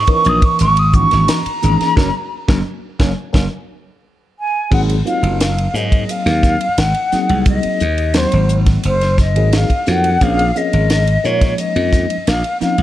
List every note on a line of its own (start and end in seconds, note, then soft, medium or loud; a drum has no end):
0.07 0.65 E3 medium
0.07 0.66 A#3 medium
0.07 0.65 C#4 medium
0.07 0.66 D#4 medium
0.07 0.66 A#4 medium
0.07 kick medium
0.07 ride medium
0.12 0.30 C#6 loud
0.24 0.40 A#1 medium
0.24 hi-hat pedal medium
0.29 0.46 D#6 medium
0.42 0.59 C#6 medium
0.42 kick medium
0.42 ride medium
0.59 1.04 G#1 medium
0.59 0.80 C#6 loud
0.59 hi-hat pedal medium
0.59 ride medium
0.77 0.96 D#6 medium
0.77 ride medium
0.93 1.40 E3 medium
0.93 1.40 A#3 medium
0.93 1.40 C#4 medium
0.93 1.41 D#4 medium
0.93 1.41 F#4 medium
0.93 1.30 C#6 loud
0.93 kick medium
0.93 hi-hat pedal medium
1.11 1.27 G#1 medium
1.11 snare soft
1.11 ride medium
1.28 2.62 A#5 loud
1.28 snare loud
1.28 hi-hat pedal medium
1.28 ride medium
1.46 muted slap bass stroke soft
1.46 ride medium
1.62 1.78 G#1 medium
1.62 1.97 E3 medium
1.62 1.96 A#3 medium
1.62 1.96 C#4 medium
1.62 1.97 D#4 medium
1.62 1.97 G#4 medium
1.62 hi-hat pedal medium
1.81 snare soft
1.81 ride soft
1.96 2.10 F#1 loud
1.96 2.08 F#3 loud
1.96 2.08 A#3 loud
1.96 2.08 C#4 medium
1.96 kick medium
1.96 snare medium
2.48 2.61 F#1 medium
2.48 2.59 F#3 medium
2.48 2.60 A#3 medium
2.48 2.59 C#4 loud
2.48 kick loud
2.48 snare loud
2.99 3.13 F#1 medium
2.99 3.11 F#3 medium
2.99 3.11 A#3 medium
2.99 3.11 C#4 loud
2.99 kick medium
2.99 snare medium
3.33 3.47 F#1 medium
3.33 3.45 F#3 medium
3.33 3.45 A#3 medium
3.33 3.45 C#4 medium
3.33 kick medium
3.33 snare medium
4.39 4.70 G#5 medium
4.71 5.01 G#1 medium
4.71 4.95 F#3 medium
4.71 4.95 A#3 medium
4.71 4.95 C4 medium
4.71 4.95 D#4 medium
4.71 4.95 G#4 medium
4.71 4.81 F#5 medium
4.71 kick loud
4.71 crash medium
4.89 ride medium
5.05 5.52 F#3 medium
5.05 5.52 A#3 medium
5.05 5.52 C4 medium
5.05 5.52 D#4 medium
5.05 5.52 F4 medium
5.05 5.38 F5 medium
5.05 hi-hat pedal medium
5.23 5.66 F#1 medium
5.23 ride medium
5.40 5.77 F5 medium
5.40 snare medium
5.40 hi-hat pedal medium
5.40 ride medium
5.58 ride medium
5.74 6.03 G#2 medium
5.74 6.67 F#3 medium
5.74 6.67 A#3 medium
5.74 6.67 C4 medium
5.74 6.67 D#4 medium
5.74 6.67 G#4 medium
5.74 6.12 D#5 medium
5.74 hi-hat pedal medium
5.92 kick medium
5.92 ride medium
6.09 6.80 F5 loud
6.09 hi-hat pedal medium
6.09 ride medium
6.26 6.55 D#2 medium
6.26 snare soft
6.26 ride soft
6.43 kick medium
6.43 snare soft
6.43 hi-hat pedal medium
6.61 ride medium
6.78 6.92 G#1 medium
6.78 7.47 F#5 medium
6.78 snare loud
6.78 hi-hat pedal medium
6.78 ride medium
6.94 ride soft
7.12 7.82 F#3 medium
7.12 7.82 A#3 medium
7.12 7.82 C4 medium
7.12 7.82 D#4 medium
7.12 7.82 G#4 medium
7.12 muted slap bass stroke soft
7.12 snare soft
7.12 hi-hat pedal medium
7.29 7.59 C2 medium
7.29 ride medium
7.46 8.18 D#5 medium
7.46 kick loud
7.46 hi-hat pedal medium
7.46 ride medium
7.63 muted slap bass stroke soft
7.63 ride medium
7.80 8.25 D#2 medium
7.80 hi-hat pedal medium
7.98 ride medium
8.14 8.96 F#3 medium
8.14 8.96 A#3 medium
8.14 8.96 C4 medium
8.14 8.96 D#4 medium
8.14 8.96 F#4 medium
8.14 8.57 C5 medium
8.14 snare loud
8.14 hi-hat pedal medium
8.14 ride medium
8.32 8.76 G#1 medium
8.32 ride medium
8.49 hi-hat pedal medium
8.66 kick medium
8.66 snare soft
8.66 ride medium
8.83 9.36 F#1 medium
8.83 9.17 C5 medium
8.83 hi-hat pedal medium
8.83 ride medium
9.01 snare soft
9.01 ride medium
9.18 9.59 D#5 medium
9.18 kick medium
9.18 snare soft
9.18 hi-hat pedal medium
9.36 9.65 G#1 medium
9.36 9.70 F#3 medium
9.36 9.70 A#3 medium
9.36 9.71 C4 medium
9.36 9.71 D#4 medium
9.36 9.70 G#4 medium
9.36 ride medium
9.53 snare loud
9.53 hi-hat pedal medium
9.53 ride medium
9.57 9.93 F5 medium
9.70 kick medium
9.70 ride medium
9.86 10.16 F2 medium
9.86 10.10 F#3 soft
9.86 10.10 A#3 medium
9.86 10.10 C4 medium
9.86 10.10 D#4 medium
9.86 10.10 F#4 medium
9.86 snare soft
9.86 hi-hat pedal medium
9.91 10.24 F#5 medium
10.04 ride medium
10.21 10.50 A#1 medium
10.21 10.44 F3 medium
10.21 10.44 A#3 medium
10.21 10.44 C4 medium
10.21 10.44 C#4 medium
10.21 10.45 G#4 medium
10.21 10.59 F5 loud
10.21 kick loud
10.21 hi-hat pedal medium
10.21 ride medium
10.39 ride medium
10.56 11.02 F3 medium
10.56 11.02 A#3 medium
10.56 11.02 C4 medium
10.56 11.02 C#4 medium
10.56 11.02 G#4 medium
10.56 11.27 D#5 medium
10.56 hi-hat pedal medium
10.73 11.16 G#1 medium
10.73 ride medium
10.90 snare medium
10.90 hi-hat pedal medium
10.90 ride medium
11.07 ride medium
11.24 11.53 A#2 medium
11.24 12.16 F3 medium
11.24 12.16 G#3 medium
11.24 12.16 A#3 medium
11.24 12.16 C#4 medium
11.24 12.16 D#4 medium
11.24 11.58 C#5 medium
11.24 hi-hat pedal medium
11.41 kick medium
11.41 snare soft
11.41 ride medium
11.58 12.30 D#5 loud
11.58 hi-hat pedal medium
11.58 ride medium
11.76 12.05 F2 medium
11.76 ride medium
11.93 kick medium
11.93 snare soft
11.93 hi-hat pedal medium
12.10 ride medium
12.27 12.42 A#1 medium
12.27 12.61 F5 medium
12.27 snare medium
12.27 hi-hat pedal medium
12.27 ride medium
12.44 ride medium
12.61 12.83 F3 medium
12.61 12.83 A#3 medium
12.61 12.83 C4 medium
12.61 12.83 C#4 medium
12.61 12.83 D#4 medium
12.61 12.83 F5 medium
12.61 muted slap bass stroke soft
12.61 snare soft
12.61 hi-hat pedal medium
12.78 12.83 C#2 medium
12.78 ride soft